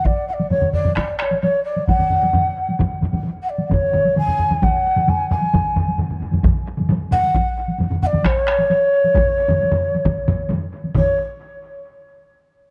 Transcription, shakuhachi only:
0.05 D5
0.28 F#5
0.33 D5
0.50 C#5
0.73 D5
0.96 D5
1.18 C#5 D5
1.41 C#5
1.64 D5
1.87 F#5
3.42 F#5
3.49 D5
3.73 C#5
4.18 G#5
4.63 F#5
5.09 G#5
5.30 G#5
7.12 F#5
8.03 D5 F#5
8.26 C5
8.40 C#5
10.97 C#5

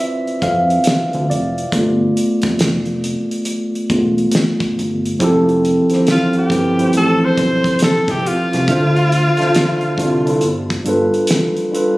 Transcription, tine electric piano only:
Already playing: C4 E4 F4 B4 C5 D5
0.00 E5
0.43 F5
1.30 D5
1.73 A3 B3 F4
3.91 A3 B3 F4
5.19 F3 C4 E4 G4
5.24 A4
5.91 F3 C4 E4 G4
5.95 C5
6.50 F3 C4 E4 G4
6.54 B4
6.78 F3 C4 E4 G4
6.82 C5
8.67 D3 D4 F4 E5
8.71 C5
9.38 D3 D4 F4 E5
9.43 C5
9.97 D3 D4 E4 F4
10.02 D5
10.25 D3 D4 E4 F4
10.29 A4
10.84 G3 D4 F4 A4
10.89 B4
11.71 G3 D4 F4 A4
11.76 B4

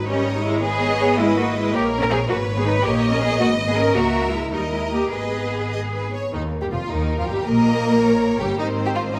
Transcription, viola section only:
0.08 G3
0.35 G3
0.44 G#3
0.63 B3
1.19 G#3
1.38 A#3
1.56 G#3
1.74 A#3
2.01 C#4
2.10 C4
2.29 A#3
2.57 B3
2.66 D#4
2.84 A#3
3.11 C#4
3.21 B3
3.40 A#3
3.68 B3
3.78 C#4
3.96 A#3
4.34 G#3
4.53 G3
4.72 G#3
4.92 A#3
5.13 B3
6.34 D#3
6.62 G3
6.71 F3
6.90 D#3
7.18 F3
7.29 G3
7.47 A#3
8.41 G3
8.59 D#3 C4
9.15 F3 C#4

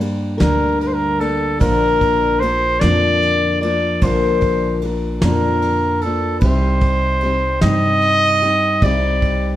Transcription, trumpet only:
0.42 A#4
0.82 A#4
0.87 C5
0.93 A#4
1.20 A4
1.61 A#4
2.40 C5
2.80 D5
3.62 D5
4.03 C5
5.22 A#4
6.02 A4
6.40 C5
7.62 D#5
8.84 D5

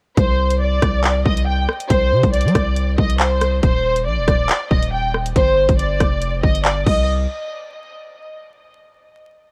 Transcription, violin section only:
0.18 C5
0.61 D5
1.26 D#5
1.47 G5
1.90 C5
2.34 D5
2.99 D#5
3.20 C5
3.63 C5
4.06 D5
4.71 D#5
4.93 G5
5.36 C5
5.79 D5
6.44 D#5
6.65 D5
6.86 D#5

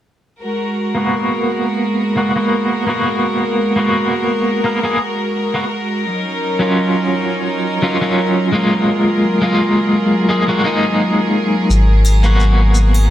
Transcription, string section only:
0.41 G#3 F#4 A#4
6.05 F#3 C#4 D#4
8.87 F4 G#4

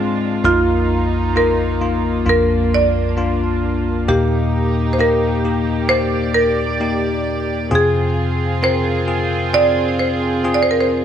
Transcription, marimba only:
0.45 F4
1.37 A#4
2.29 A#4
2.74 D5
4.09 G4
4.93 C5
5.01 A#4
5.89 C5
6.34 A#4
7.75 G#4
8.64 C5
9.54 D5
9.99 C5
10.54 D5
10.63 C5
10.71 A#4
10.81 C5

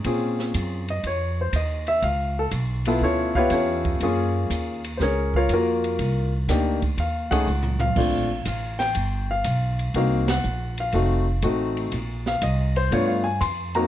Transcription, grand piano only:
0.05 C4 C#4 F4 G#4
0.90 D#5
1.07 C#5
1.41 C5
1.56 D#5
1.88 E5
2.04 F5
2.39 A4
2.87 B3 E4 F4 A4
3.03 C#4 F4 A4 C#5
3.35 B3 F4 G4 B4 C#5 E5 F5
3.52 C#4 F4 A4 C#5
4.03 A#3 C#4 F4 G#4
4.97 C5
5.02 C#4 G#4 A#4 C#5
5.36 F4 A#4 C#5 F5
5.53 A#3 F4 F#4 A#4
6.49 A#3 D4 D#4 G4
7.00 F5
7.31 A3 C#4 D#4 G#4 F#5
7.80 F5
7.97 A3 C4 D4 F4
8.47 F5
8.79 G5
9.31 F5
9.96 A#3 C4 D#4 F#4 F5
10.30 F#5
10.80 F5
10.94 A3 C4 D#4 F#4
11.43 A3 C4 D#4 F#4
12.28 F5
12.43 D#5
12.77 C5
12.92 A3 B3 D4 F4 C#5
13.08 F5
13.24 G#5
13.41 C6
13.75 A#3 C4 D#4 F#4 A#5

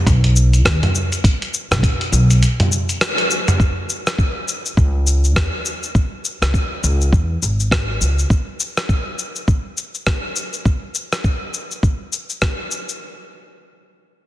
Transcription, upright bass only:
0.07 B1
0.65 D#2
1.71 B1
2.12 B1
4.77 C#2
5.36 E2
6.42 C#2
6.84 C#2
7.13 E2
7.42 G#1
8.01 C#2

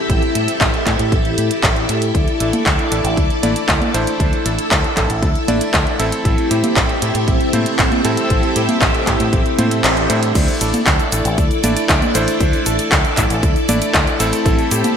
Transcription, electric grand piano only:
2.40 A3 D4 E4 A4
2.92 A3 D4 E4 A4
3.43 A3 D4 E4 D5
3.94 A3 D4 E4 C5
4.46 A3 D4 E4 A4
4.97 A3 D4 E4 A4
5.48 A3 D4 E4 D5
6.00 A3 C4 E4 A4
6.51 A3 C4 E4 G4
7.02 A3 C4 E4 G4
7.53 A3 C4 E4 C5
8.05 A3 C4 E4 A4
8.56 A3 C4 E4 G4
9.07 A3 C4 E4 G4
9.59 A3 C4 E4 C5
10.10 A3 D4 E4 C5
10.61 A3 D4 E4 A4
11.12 A3 D4 E4 A4
11.64 A3 D4 E4 D5
12.15 A3 D4 E4 C5
12.66 A3 D4 E4 A4
13.17 A3 D4 E4 A4
13.69 A3 D4 E4 D5
14.20 A3 C4 E4 A4
14.71 A3 C4 E4 G4

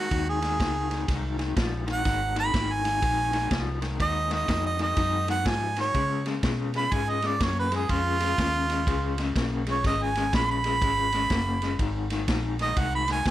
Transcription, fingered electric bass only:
0.11 D#2
0.60 C#2
1.08 C2
1.57 A#1
2.05 G#1
2.54 G#1
3.02 A#1
3.51 C2
4.00 D#2
4.48 F2
4.97 F#2
5.46 G#2
5.95 C#3
6.43 B2
6.92 G#2
7.41 F#2
7.89 F2
8.38 D#2
8.87 C#2
9.36 B1
9.85 G#1
10.33 A#1
10.82 G#1
11.31 F#1
11.79 G#1
12.28 A#1
12.77 C2
13.26 C#2

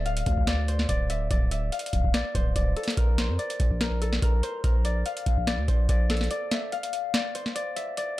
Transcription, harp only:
Already playing: A4 C5 D5 E5
0.06 F5
0.47 D5
0.68 C5
0.89 D5
1.10 E5
1.31 D5
1.51 E5
1.72 F5
2.14 D5
2.35 C5
2.56 D5
2.76 A4
2.97 A#4
3.18 C5
3.39 D5
3.81 A#4
4.02 A4
4.22 A#4
4.43 C5
4.64 A#4
4.85 D5
5.06 F5
5.47 D5
5.68 C5
5.89 D5
6.10 A4
6.31 D5
6.51 E5
6.72 F5
7.14 D5
7.35 C5
7.55 D5
7.76 E5
7.97 D5

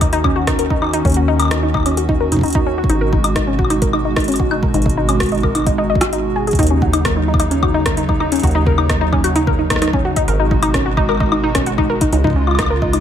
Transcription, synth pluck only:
0.01 D#4
0.13 D#4
0.24 C#4
0.36 F#4
0.47 D#4
0.59 A#4
0.70 D#4
0.82 D#4
0.93 D#4
1.05 C#4
1.17 F#4
1.28 D#4
1.40 A#4
1.51 D#4
1.63 D#4
1.74 D#4
1.86 C#4
1.97 F#4
2.09 D#4
2.20 A#4
2.32 D#4
2.43 D#4
2.55 D#4
2.66 C#4
2.78 F#4
2.89 D#4
3.01 A#4
3.13 D#4
3.24 D#4
3.36 D#4
3.47 C#4
3.59 F#4
3.70 D#4
3.82 A#4
3.93 D#4
4.05 D#4
4.17 D#4
4.28 C#4
4.40 F#4
4.51 D#4
4.63 A#4
4.74 D#4
4.86 D#4
4.97 D#4
5.09 C#4
5.20 F#4
5.32 D#4
5.44 A#4
5.55 D#4
5.67 D#4
5.78 D#4
5.90 D#5
6.01 F#4
6.13 D#4
6.36 G#4
6.47 G#4
6.59 D#4
6.70 C#4
6.82 F#4
6.93 D#4
7.05 A#4
7.17 D#4
7.28 D#4
7.40 D#4
7.51 C#4
7.63 F#4
7.74 D#4
7.86 A#4
7.97 D#4
8.09 D#4
8.20 D#4
8.32 C#4
8.43 F#4
8.55 D#4
8.66 A#4
8.78 D#4
8.90 D#4
9.01 D#4
9.13 C#4
9.24 F#4
9.36 D#4
9.47 A#4
9.59 D#4
9.70 D#4
9.82 D#4
9.93 C#4
10.05 F#4
10.16 D#4
10.28 A#4
10.40 D#4
10.51 D#4
10.63 D#4
10.74 C#4
10.86 F#4
10.97 D#4
11.09 A#4
11.20 D#4
11.32 D#4
11.43 D#4
11.55 C#4
11.67 F#4
11.78 D#4
11.90 A#4
12.01 D#4
12.13 D#4
12.24 D#4
12.36 C#4
12.47 F4
12.59 D#4
12.70 A#4
12.82 D#4
12.93 D#4

